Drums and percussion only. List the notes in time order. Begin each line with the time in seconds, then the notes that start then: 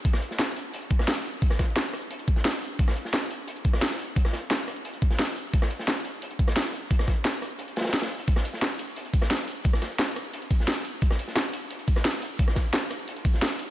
0.05 kick, closed hi-hat
0.13 cross-stick, snare
0.22 closed hi-hat, shaker
0.31 snare
0.39 snare, closed hi-hat
0.56 closed hi-hat, open hi-hat, shaker
0.74 closed hi-hat
0.82 closed hi-hat
0.90 kick, closed hi-hat, shaker
0.99 cross-stick, snare
1.08 snare, closed hi-hat
1.17 snare
1.25 closed hi-hat, open hi-hat, shaker
1.34 shaker
1.42 kick, closed hi-hat
1.50 cross-stick, snare
1.59 kick, cross-stick, snare, closed hi-hat, shaker
1.68 shaker
1.76 snare, closed hi-hat
1.94 cross-stick, closed hi-hat, open hi-hat, shaker
2.02 closed hi-hat
2.11 closed hi-hat
2.19 closed hi-hat
2.28 kick, closed hi-hat, shaker
2.36 snare, closed hi-hat
2.45 snare, closed hi-hat, open hi-hat
2.62 closed hi-hat, open hi-hat, shaker
2.71 shaker
2.79 kick, closed hi-hat
2.88 cross-stick, snare
2.96 closed hi-hat, shaker
3.05 snare
3.13 snare, closed hi-hat
3.31 closed hi-hat, open hi-hat, shaker
3.48 closed hi-hat
3.56 closed hi-hat
3.65 kick, closed hi-hat, shaker
3.73 cross-stick, snare
3.81 snare, closed hi-hat
3.91 snare
3.99 closed hi-hat, open hi-hat, shaker
4.08 shaker
4.16 kick, closed hi-hat
4.25 cross-stick, snare
4.33 cross-stick, snare, closed hi-hat, shaker
4.42 shaker
4.51 snare, closed hi-hat
4.68 cross-stick, closed hi-hat, open hi-hat, shaker
4.76 closed hi-hat
4.85 closed hi-hat
4.94 closed hi-hat
5.02 kick, closed hi-hat, shaker
5.10 snare, closed hi-hat
5.19 snare, closed hi-hat, open hi-hat
5.36 closed hi-hat, open hi-hat, shaker
5.45 shaker
5.53 kick, closed hi-hat
5.62 cross-stick, snare
5.70 closed hi-hat, shaker
5.79 snare
5.88 snare, closed hi-hat
6.05 closed hi-hat, open hi-hat, shaker
6.22 closed hi-hat
6.30 closed hi-hat
6.39 kick, closed hi-hat, shaker
6.47 cross-stick, snare
6.56 snare, closed hi-hat
6.65 snare
6.74 closed hi-hat, open hi-hat, shaker
6.82 shaker
6.91 kick, closed hi-hat
6.99 cross-stick, snare
7.08 kick, cross-stick, snare, closed hi-hat, shaker
7.16 shaker
7.24 snare, closed hi-hat
7.42 cross-stick, closed hi-hat, open hi-hat, shaker
7.51 closed hi-hat
7.59 closed hi-hat
7.68 closed hi-hat
7.76 snare, closed hi-hat, shaker
7.80 snare, closed hi-hat
7.84 snare, closed hi-hat
7.89 snare, closed hi-hat
7.94 snare, closed hi-hat
8.02 snare, closed hi-hat, open hi-hat
8.11 open hi-hat, shaker
8.19 closed hi-hat, shaker
8.28 kick, closed hi-hat
8.36 cross-stick, snare
8.45 closed hi-hat, ride, shaker
8.53 snare
8.62 snare, closed hi-hat
8.79 closed hi-hat, open hi-hat, ride, shaker
8.96 closed hi-hat
9.05 closed hi-hat
9.14 kick, closed hi-hat, ride, shaker
9.22 cross-stick, snare
9.30 snare, closed hi-hat
9.39 snare
9.48 closed hi-hat, open hi-hat, ride, shaker
9.56 shaker
9.64 kick, closed hi-hat
9.73 cross-stick, snare
9.82 cross-stick, snare, closed hi-hat, ride, shaker
9.91 shaker
9.99 snare, closed hi-hat
10.15 cross-stick, closed hi-hat, open hi-hat, ride, shaker
10.25 closed hi-hat
10.33 closed hi-hat
10.42 closed hi-hat
10.51 kick, closed hi-hat, ride, shaker
10.59 snare, closed hi-hat
10.68 snare, closed hi-hat, open hi-hat
10.85 closed hi-hat, open hi-hat, ride, shaker
10.93 shaker
11.02 kick, closed hi-hat
11.11 cross-stick, snare
11.19 closed hi-hat, ride, shaker
11.28 snare
11.35 snare, closed hi-hat
11.53 closed hi-hat, open hi-hat, ride, shaker
11.71 closed hi-hat
11.79 closed hi-hat
11.88 kick, closed hi-hat, ride, shaker
11.96 cross-stick, snare
12.04 snare, closed hi-hat
12.13 snare
12.22 closed hi-hat, open hi-hat, ride, shaker
12.31 shaker
12.39 kick, closed hi-hat
12.48 cross-stick, snare
12.56 kick, cross-stick, snare, closed hi-hat, ride, shaker
12.65 shaker
12.73 snare, closed hi-hat
12.91 cross-stick, closed hi-hat, open hi-hat, ride, shaker
12.99 closed hi-hat
13.08 closed hi-hat
13.16 closed hi-hat
13.25 kick, closed hi-hat, ride, shaker
13.34 snare, closed hi-hat
13.42 snare, closed hi-hat, open hi-hat
13.59 closed hi-hat, open hi-hat, ride, shaker